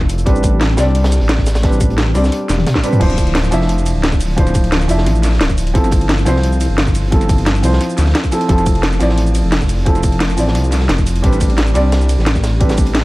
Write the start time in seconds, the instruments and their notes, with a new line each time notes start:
Already playing: detuned saw bass F1, felt piano F3 C4 E4 A4 D5
0.01 kick, snare
0.09 closed hi-hat, shaker
0.18 closed hi-hat, shaker
0.26 detuned saw bass A1, felt piano G3 C4 D4 B4, kick, closed hi-hat
0.36 shaker
0.43 kick, closed hi-hat, shaker
0.61 snare, closed hi-hat
0.77 detuned saw bass C2, felt piano G3 C4 D4 D5, snare, closed hi-hat, shaker
0.95 closed hi-hat, open hi-hat
1.04 snare, closed hi-hat
1.12 snare, closed hi-hat, shaker
1.21 detuned saw bass A1, open hi-hat
1.29 snare, closed hi-hat
1.38 kick, snare
1.46 snare, closed hi-hat, shaker
1.55 snare, closed hi-hat, shaker
1.63 felt piano G3 C4 D4 B4, kick, snare, closed hi-hat
1.72 shaker
1.80 kick, closed hi-hat, shaker
1.90 closed hi-hat
1.98 snare, closed hi-hat
2.14 detuned saw bass C2, felt piano G3 C4 D4 D5, snare, closed hi-hat, open hi-hat, shaker
2.24 snare, shaker
2.32 closed hi-hat
2.49 detuned saw bass E1, snare, closed hi-hat, shaker
2.58 snare, high tom
2.66 snare, closed hi-hat, mid tom
2.75 kick, snare
2.83 felt piano G3 C4 D4 B4, closed hi-hat, shaker
2.93 closed hi-hat, mid tom, shaker
2.99 detuned saw bass D1, felt piano F3 D4 E4 C5, kick, closed hi-hat, crash
3.10 snare, closed hi-hat, shaker
3.17 kick, closed hi-hat, ride, shaker
3.27 closed hi-hat
3.35 snare, closed hi-hat
3.44 shaker
3.51 detuned saw bass F1, felt piano F3 D4 E4 E5, snare, closed hi-hat, ride, shaker
3.61 snare
3.69 closed hi-hat
3.78 shaker
3.86 closed hi-hat, ride, shaker
3.95 detuned saw bass D1
4.04 snare, closed hi-hat
4.12 kick, snare, shaker
4.20 closed hi-hat, open hi-hat, ride, shaker
4.36 felt piano F3 D4 E4 C5, kick, closed hi-hat
4.47 snare, closed hi-hat, shaker
4.54 kick, closed hi-hat, ride, shaker
4.64 closed hi-hat
4.72 snare, closed hi-hat
4.81 shaker
4.88 detuned saw bass F1, felt piano F3 D4 E4 E5, closed hi-hat, open hi-hat, ride, shaker
4.98 snare
5.06 detuned saw bass A1, snare, closed hi-hat
5.15 shaker
5.23 snare, closed hi-hat, ride, shaker
5.34 snare
5.41 detuned saw bass D1, snare, closed hi-hat
5.50 kick, closed hi-hat, shaker
5.58 closed hi-hat, ride, shaker
5.67 closed hi-hat
5.74 detuned saw bass G1, felt piano F3 C4 E4 A4, kick, closed hi-hat
5.84 snare, closed hi-hat, shaker
5.91 kick, closed hi-hat, ride, shaker
6.01 closed hi-hat
6.09 snare, closed hi-hat
6.18 shaker
6.25 detuned saw bass C2, felt piano F3 C4 E4 C5, snare, closed hi-hat, ride, shaker
6.36 snare
6.43 closed hi-hat
6.52 shaker
6.61 closed hi-hat, ride, shaker
6.70 detuned saw bass G1
6.78 snare, closed hi-hat
6.87 kick, snare, shaker
6.95 closed hi-hat, open hi-hat, ride, shaker
7.11 felt piano F3 C4 E4 A4, kick, closed hi-hat
7.21 snare, closed hi-hat, shaker
7.29 kick, closed hi-hat, ride, shaker
7.38 closed hi-hat
7.46 snare, closed hi-hat
7.55 shaker
7.62 detuned saw bass C2, felt piano F3 C4 E4 C5, closed hi-hat, open hi-hat, ride, shaker
7.73 snare
7.81 snare, closed hi-hat
7.90 shaker
7.98 detuned saw bass D2, snare, closed hi-hat, ride, shaker
8.06 snare
8.14 snare, closed hi-hat
8.24 kick, closed hi-hat, shaker
8.32 felt piano F3 C4 E4 A4, closed hi-hat, ride, shaker
8.41 closed hi-hat
8.48 detuned saw bass F1, felt piano F3 C4 E4 A4, kick, closed hi-hat
8.58 snare, closed hi-hat, shaker
8.66 kick, closed hi-hat, ride, shaker
8.75 closed hi-hat
8.83 snare, closed hi-hat
8.92 shaker
8.99 detuned saw bass A1, felt piano F3 C4 E4 D5, snare, closed hi-hat, ride, shaker
9.09 snare
9.18 closed hi-hat
9.27 shaker
9.35 closed hi-hat, ride, shaker
9.44 detuned saw bass F1
9.52 snare, closed hi-hat
9.61 kick, snare, shaker
9.69 closed hi-hat, open hi-hat, ride, shaker
9.85 felt piano F3 C4 E4 A4, kick, closed hi-hat
9.95 snare, closed hi-hat, shaker
10.03 kick, closed hi-hat, ride, shaker
10.12 closed hi-hat
10.20 snare, closed hi-hat
10.29 shaker
10.37 detuned saw bass A1, felt piano F3 C4 E4 D5, closed hi-hat, open hi-hat, ride, shaker
10.48 snare
10.55 detuned saw bass C2, snare, closed hi-hat
10.64 shaker
10.72 snare, closed hi-hat, ride, shaker
10.81 snare
10.89 detuned saw bass F1, snare, closed hi-hat
10.98 kick, closed hi-hat, shaker
11.06 closed hi-hat, ride, shaker
11.16 closed hi-hat
11.22 detuned saw bass A1, felt piano G3 C4 D4 B4, kick, closed hi-hat
11.33 snare, closed hi-hat, shaker
11.40 kick, closed hi-hat, ride, shaker
11.50 closed hi-hat
11.57 snare, closed hi-hat
11.67 shaker
11.74 detuned saw bass C2, felt piano G3 C4 D4 D5, snare, closed hi-hat, ride, shaker
11.92 snare, closed hi-hat
12.01 shaker
12.09 closed hi-hat, ride, shaker
12.18 detuned saw bass A1, snare
12.26 snare, closed hi-hat
12.35 kick, snare, shaker
12.44 snare, closed hi-hat, ride, shaker
12.60 felt piano G3 C4 D4 B4, kick, closed hi-hat
12.69 snare, closed hi-hat, shaker
12.78 kick, closed hi-hat, ride, shaker
12.86 closed hi-hat
12.94 snare, closed hi-hat